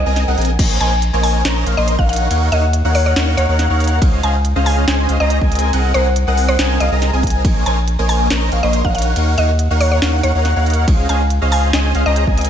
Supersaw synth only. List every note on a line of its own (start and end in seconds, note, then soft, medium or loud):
0.06 0.24 C4 medium
0.06 0.24 G#4 medium
0.06 0.24 A#4 medium
0.06 0.24 D#5 medium
0.06 0.24 G#5 medium
0.28 0.36 C4 medium
0.28 0.36 G#4 medium
0.28 0.36 A#4 medium
0.28 0.36 D#5 medium
0.28 0.36 F#5 medium
0.38 0.50 C4 medium
0.38 0.50 G#4 medium
0.38 0.50 A#4 medium
0.38 0.50 D#5 medium
0.38 0.50 G#5 loud
0.59 0.78 A#3 medium
0.59 0.78 A#4 medium
0.59 0.78 C5 medium
0.59 0.78 C#5 medium
0.59 0.78 D#5 medium
0.59 0.78 G#5 medium
0.80 0.93 A#3 medium
0.80 0.93 A#4 medium
0.80 0.93 C5 medium
0.80 0.93 C#5 medium
0.80 0.93 D#5 medium
0.80 0.93 G#5 loud
1.13 1.42 A#3 medium
1.13 1.42 A#4 medium
1.13 1.42 C5 medium
1.13 1.42 C#5 medium
1.13 1.42 D#5 medium
1.13 1.42 G#5 loud
1.45 1.64 A#3 loud
1.45 1.64 A#4 medium
1.45 1.64 C5 medium
1.45 1.64 C#5 medium
1.45 1.64 D#5 medium
1.45 1.64 A#5 loud
1.66 1.75 A#3 medium
1.66 1.75 A#4 medium
1.66 1.75 C5 medium
1.66 1.75 C#5 medium
1.66 1.75 D#5 medium
1.66 1.75 F5 loud
1.78 1.96 A#3 medium
1.78 1.96 A#4 medium
1.78 1.96 C5 medium
1.78 1.96 C#5 medium
1.78 1.96 D#5 medium
1.78 1.96 C6 medium
1.99 2.28 D#4 medium
1.99 2.28 A#4 medium
1.99 2.28 C#5 medium
1.99 2.28 F5 medium
1.99 2.28 F#5 loud
2.31 2.50 D#4 medium
2.31 2.50 A#4 medium
2.31 2.50 C#5 medium
2.31 2.50 F5 medium
2.31 2.50 F#5 medium
2.52 2.64 D#4 medium
2.52 2.64 A#4 medium
2.52 2.64 C#5 medium
2.52 2.64 F5 medium
2.52 2.64 F#5 loud
2.85 3.14 D#4 medium
2.85 3.14 A#4 medium
2.85 3.14 C#5 medium
2.85 3.14 F5 medium
2.85 3.14 F#5 loud
3.16 3.36 D#4 loud
3.16 3.36 A#4 medium
3.16 3.36 C#5 medium
3.16 3.36 F5 medium
3.16 3.36 F#5 loud
3.38 3.46 D#4 medium
3.38 3.46 A#4 medium
3.38 3.46 C#5 medium
3.38 3.46 F5 medium
3.38 3.46 F#5 loud
3.49 3.67 D#4 medium
3.49 3.67 A#4 medium
3.49 3.67 C#5 medium
3.49 3.67 F5 medium
3.49 3.67 F#5 medium
3.70 3.99 D#4 loud
3.70 3.99 A#4 medium
3.70 3.99 C#5 medium
3.70 3.99 F5 medium
3.70 3.99 F#5 loud
4.02 4.21 C#4 medium
4.02 4.21 G#4 medium
4.02 4.21 C5 medium
4.02 4.21 D#5 medium
4.02 4.21 F5 medium
4.23 4.35 C#4 medium
4.23 4.35 G#4 medium
4.23 4.35 C5 medium
4.23 4.35 D#5 medium
4.23 4.35 F5 loud
4.56 4.85 C#4 medium
4.56 4.85 G#4 medium
4.56 4.85 C5 medium
4.56 4.85 D#5 medium
4.56 4.85 F5 loud
4.87 5.07 C#4 loud
4.87 5.07 G#4 medium
4.87 5.07 C5 medium
4.87 5.07 D#5 medium
4.87 5.07 G#5 loud
5.09 5.17 C#4 medium
5.09 5.17 G#4 medium
5.09 5.17 C5 medium
5.09 5.18 D#5 medium
5.09 5.17 F5 medium
5.20 5.39 C#4 medium
5.20 5.39 G#4 medium
5.20 5.39 C5 medium
5.20 5.39 D#5 medium
5.20 5.39 A#5 medium
5.42 5.71 C4 loud
5.42 5.71 G#4 medium
5.42 5.71 A#4 medium
5.42 5.71 D#5 medium
5.42 5.71 G#5 loud
5.73 5.92 C4 medium
5.73 5.92 G#4 medium
5.73 5.92 A#4 medium
5.73 5.92 D#5 medium
5.73 5.92 F#5 medium
5.95 6.07 C4 medium
5.95 6.07 G#4 medium
5.95 6.07 A#4 medium
5.95 6.07 D#5 medium
5.95 6.07 F#5 loud
6.27 6.57 C4 medium
6.27 6.57 G#4 medium
6.27 6.57 A#4 medium
6.27 6.57 D#5 medium
6.27 6.57 F#5 loud
6.59 6.78 C4 loud
6.59 6.78 G#4 medium
6.59 6.78 A#4 medium
6.59 6.78 D#5 medium
6.59 6.78 G#5 loud
6.81 6.89 C4 medium
6.81 6.89 G#4 medium
6.81 6.89 A#4 medium
6.81 6.89 D#5 medium
6.81 6.89 F5 medium
6.92 7.10 C4 medium
6.92 7.10 G#4 medium
6.92 7.10 A#4 medium
6.92 7.10 D#5 medium
6.92 7.10 A#5 medium
7.13 7.42 C4 loud
7.13 7.42 G#4 medium
7.13 7.42 A#4 medium
7.13 7.42 D#5 medium
7.13 7.42 G#5 loud
7.45 7.64 A#3 medium
7.45 7.64 A#4 medium
7.45 7.64 C5 medium
7.45 7.64 C#5 medium
7.45 7.64 D#5 medium
7.45 7.64 G#5 medium
7.66 7.79 A#3 medium
7.66 7.79 A#4 medium
7.66 7.79 C5 medium
7.66 7.79 C#5 medium
7.66 7.79 D#5 medium
7.66 7.79 G#5 loud
7.99 8.28 A#3 medium
7.99 8.28 A#4 medium
7.99 8.28 C5 medium
7.99 8.28 C#5 medium
7.99 8.28 D#5 medium
7.99 8.28 G#5 loud
8.30 8.50 A#3 medium
8.30 8.50 A#4 medium
8.30 8.50 C5 medium
8.30 8.50 C#5 medium
8.30 8.50 D#5 medium
8.30 8.50 A#5 loud
8.52 8.60 A#3 medium
8.52 8.60 A#4 medium
8.52 8.60 C5 medium
8.52 8.60 C#5 medium
8.52 8.60 D#5 medium
8.52 8.60 F5 loud
8.63 8.82 A#3 medium
8.63 8.82 A#4 medium
8.63 8.82 C5 medium
8.63 8.82 C#5 medium
8.63 8.82 D#5 medium
8.63 8.82 C6 medium
8.85 9.14 D#4 loud
8.85 9.14 A#4 medium
8.85 9.14 C#5 medium
8.85 9.14 F5 medium
8.85 9.14 F#5 loud
9.16 9.35 D#4 medium
9.16 9.35 A#4 medium
9.16 9.35 C#5 medium
9.16 9.35 F5 medium
9.16 9.35 F#5 medium
9.38 9.50 D#4 medium
9.38 9.50 A#4 medium
9.38 9.50 C#5 medium
9.38 9.50 F5 medium
9.38 9.50 F#5 loud
9.71 10.00 D#4 medium
9.71 10.00 A#4 medium
9.71 10.00 C#5 medium
9.71 10.00 F5 medium
9.71 10.00 F#5 loud
10.02 10.21 D#4 loud
10.02 10.21 A#4 medium
10.02 10.21 C#5 medium
10.02 10.21 F5 medium
10.02 10.21 F#5 loud
10.23 10.32 D#4 medium
10.23 10.32 A#4 medium
10.23 10.32 C#5 medium
10.23 10.32 F5 medium
10.23 10.32 F#5 medium
10.35 10.53 D#4 medium
10.35 10.53 A#4 medium
10.35 10.53 C#5 medium
10.35 10.53 F5 medium
10.35 10.53 F#5 medium
10.56 10.85 D#4 loud
10.56 10.85 A#4 medium
10.56 10.85 C#5 medium
10.56 10.85 F5 medium
10.56 10.85 F#5 loud
10.88 11.07 C#4 medium
10.88 11.07 G#4 medium
10.88 11.07 C5 medium
10.88 11.07 D#5 medium
10.88 11.07 F5 medium
11.09 11.21 C#4 medium
11.09 11.21 G#4 medium
11.09 11.21 C5 medium
11.09 11.21 D#5 medium
11.09 11.21 F5 loud
11.41 11.71 C#4 medium
11.41 11.71 G#4 medium
11.41 11.71 C5 medium
11.41 11.71 D#5 medium
11.41 11.71 F5 loud
11.73 11.93 C#4 loud
11.73 11.93 G#4 medium
11.73 11.93 C5 medium
11.73 11.93 D#5 medium
11.73 11.93 G#5 loud
11.95 12.03 C#4 medium
11.95 12.03 G#4 medium
11.95 12.03 C5 medium
11.95 12.03 D#5 medium
11.95 12.03 F5 loud
12.06 12.25 C#4 medium
12.06 12.25 G#4 medium
12.06 12.25 C5 medium
12.06 12.25 D#5 medium
12.06 12.25 A#5 loud
12.27 12.50 C4 medium
12.27 12.50 G#4 medium
12.27 12.50 A#4 medium
12.27 12.50 D#5 medium
12.27 12.50 G#5 loud